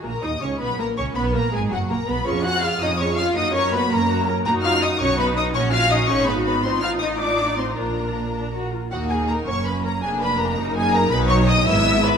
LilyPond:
<<
  \new Staff \with { instrumentName = "Violin section" } { \time 6/8 \key fis \major \tempo 4. = 109 ais''8 dis'''8 cis'''8 b''8 ais''8 cis'''8 | b''8 ais''8 gis''8 fis''8 ais''8 b''8 | cis'''8 fis'''8 eis'''8 dis'''8 cis'''8 eis'''8 | dis'''8 cis'''8 b''8 ais''4 r8 |
\key ees \minor bes''8 f'''8 ees'''8 des'''8 b''8 dis'''8 | des'''8 f'''8 ees'''8 des'''8 ces'''8 ces'''8 | c'''8 f'''8 ees'''8 d'''4 c'''8 | bes''2~ bes''8 r8 |
ges''8 aes''8 bes''8 des'''8 ces'''8 bes''8 | aes''8 ces'''8 bes''4 aes''8 bes''8 | b''8 des'''8 dis'''8 e'''4 b''8 | }
  \new Staff \with { instrumentName = "Violin section" } { \time 6/8 \key fis \major ais'8 dis''8 cis''8 b'8 ais'8 cis''8 | b'8 ais'8 gis'8 fis'8 ais'8 b'8 | cis''8 fis''8 eis''8 dis''8 cis''8 eis''8 | dis''8 cis''8 b'8 ais'4 r8 |
\key ees \minor bes'8 f''8 ees''8 des''8 b'8 dis''8 | des''8 f''8 ees''8 des''8 ces''8 ces''8 | c''8 f''8 ees''8 d''4 c''8 | bes'2~ bes'8 r8 |
ges'8 aes'8 bes'8 des''8 ces''8 bes'8 | aes'8 ces''8 bes'4 aes'8 bes'8 | b'8 des''8 dis''8 e''4 b'8 | }
  \new Staff \with { instrumentName = "Viola section" } { \time 6/8 \key fis \major << { ais8 dis'8 cis'8 b8 ais8 cis'8 | b8 ais8 gis8 fis8 ais8 b8 | gis'8 eis'8 gis'8 eis'8 gis'8 eis'8 | fis'8 ais'8 fis'8 ais'8 fis'8 ais'8 |
\key ees \minor ges'4. fis'4. | ges'4. aes'8. ges'8. | f'2. | f'4. d'8 ges'8 f'8 |
ees'4. des'4. | d'4. ees'4. | dis'4. e'4. | } \\ { r2. | r2. | eis'8 cis'8 eis'8 cis'8 eis'8 cis'8 | ais8 cis'8 ais8 cis'8 ais8 cis'8 |
ees'4. dis'4. | des'4. ees'4. | ees'2. | d'4. r4. |
bes4. bes4. | bes4. bes4. | fis4. b4. | } >> }
  \new Staff \with { instrumentName = "Cello section" } { \time 6/8 \key fis \major ais8 dis'8 cis'8 b8 ais8 cis'8 | b8 ais8 gis8 fis8 ais8 b8 | cis'8 fis'8 eis'8 dis'8 cis'8 eis'8 | dis'8 cis'8 b8 ais4 r8 |
\key ees \minor bes8 f'8 ees'8 des'8 b8 dis'8 | des'8 f'8 ees'8 des'8 ces'8 ces'8 | c'8 f'8 ees'8 d'4 c'8 | bes2~ bes8 r8 |
ees,4. ges,4. | f,4. ges,4. | b,4. gis,4. | }
  \new Staff \with { instrumentName = "Double bass section" } { \clef bass \time 6/8 \key fis \major ais,,8 dis,8 cis,8 b,,8 ais,,8 cis,8 | b,,8 ais,,8 gis,,8 fis,,8 ais,,8 b,,8 | eis,4. eis,4. | fis,4. fis,4. |
\key ees \minor ges,4. b,,4. | bes,,4. aes,,4. | a,,2. | bes,,2~ bes,,8 r8 |
ees,4. ges,,4. | f,,4. ges,,4. | b,,4. gis,,4. | }
>>